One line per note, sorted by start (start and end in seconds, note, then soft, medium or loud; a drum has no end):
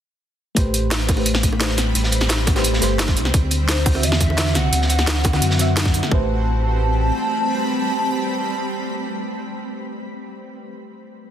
0.55 1.94 A1 loud
0.55 3.31 G3 medium
0.55 1.08 A3 loud
0.55 6.07 C4 medium
0.55 1.08 G4 medium
0.55 1.09 B4 medium
0.55 1.09 C5 loud
0.55 3.31 B5 medium
0.55 kick loud
0.55 closed hi-hat medium
0.74 closed hi-hat medium
0.91 snare loud
0.91 closed hi-hat medium
1.00 closed hi-hat soft
1.09 kick loud
1.09 closed hi-hat medium
1.09 open hi-hat medium
1.09 high bongo medium
1.16 1.58 A3 medium
1.16 1.58 G4 medium
1.16 1.59 B4 medium
1.16 1.59 C5 medium
1.16 high bongo medium
1.26 closed hi-hat medium
1.34 snare medium
1.43 kick medium
1.43 closed hi-hat medium
1.53 high bongo medium
1.59 2.53 A3 medium
1.59 2.54 G4 medium
1.59 2.54 B4 medium
1.59 2.55 C5 loud
1.59 snare loud
1.59 closed hi-hat loud
1.69 snare medium
1.77 snare medium
1.77 closed hi-hat medium
1.95 2.81 A1 loud
1.95 closed hi-hat medium
2.04 snare soft
2.12 closed hi-hat medium
2.20 snare soft
2.20 closed hi-hat soft
2.29 snare loud
2.29 closed hi-hat loud
2.29 closed hi-hat medium
2.47 kick loud
2.47 snare soft
2.47 closed hi-hat medium
2.47 high bongo medium
2.55 2.79 A3 loud
2.55 2.80 G4 medium
2.55 2.80 B4 medium
2.55 2.80 C5 loud
2.55 snare soft
2.55 closed hi-hat soft
2.55 high bongo medium
2.64 closed hi-hat medium
2.74 snare soft
2.80 3.18 G1 loud
2.80 3.32 A3 medium
2.80 3.33 G4 medium
2.80 3.33 B4 medium
2.80 3.34 C5 loud
2.80 snare soft
2.80 closed hi-hat medium
2.99 snare loud
2.99 closed hi-hat medium
3.08 kick loud
3.08 snare medium
3.17 3.32 C2 loud
3.17 closed hi-hat medium
3.25 snare soft
3.34 4.05 D2 loud
3.34 6.09 E3 medium
3.34 6.09 F#4 medium
3.34 kick loud
3.34 closed hi-hat medium
3.51 closed hi-hat medium
3.68 4.05 C5 medium
3.68 snare loud
3.68 closed hi-hat medium
3.77 closed hi-hat soft
3.86 kick loud
3.86 closed hi-hat medium
3.86 open hi-hat medium
3.86 high bongo medium
3.93 4.35 D3 medium
3.93 4.36 C4 medium
3.93 4.36 F#4 medium
3.93 4.37 E5 medium
3.93 high bongo medium
4.03 4.57 E2 loud
4.03 4.57 E5 loud
4.03 closed hi-hat medium
4.12 snare medium
4.20 kick medium
4.20 closed hi-hat medium
4.30 high bongo medium
4.36 5.30 D3 medium
4.36 5.31 C4 medium
4.36 5.32 F#4 medium
4.36 5.32 E5 loud
4.36 snare loud
4.36 closed hi-hat medium
4.46 snare soft
4.55 4.71 C2 medium
4.55 5.77 F#5 loud
4.55 snare medium
4.55 closed hi-hat medium
4.72 5.41 D2 loud
4.72 closed hi-hat medium
4.82 snare soft
4.89 closed hi-hat medium
4.98 snare soft
4.98 closed hi-hat soft
5.07 snare loud
5.07 closed hi-hat medium
5.24 kick loud
5.24 snare soft
5.24 closed hi-hat medium
5.24 high bongo medium
5.33 5.57 D3 loud
5.33 5.57 C4 medium
5.33 5.58 F#4 medium
5.33 5.58 F#5 loud
5.33 snare soft
5.33 closed hi-hat soft
5.33 high bongo medium
5.42 6.01 F#2 medium
5.42 closed hi-hat medium
5.50 snare soft
5.58 6.10 D3 medium
5.58 6.10 C4 medium
5.58 6.11 F#4 medium
5.58 6.11 E5 loud
5.58 snare soft
5.58 closed hi-hat medium
5.77 snare loud
5.77 closed hi-hat medium
5.86 kick loud
5.86 snare medium
5.94 closed hi-hat medium
6.03 snare soft
6.09 7.12 A1 loud
6.09 9.65 G3 medium
6.09 9.96 A3 medium
6.09 9.65 C4 medium
6.09 9.98 G4 medium
6.09 9.99 B4 medium
6.09 9.65 A5 loud
6.09 9.65 B5 medium
6.09 kick loud
6.14 10.01 C5 medium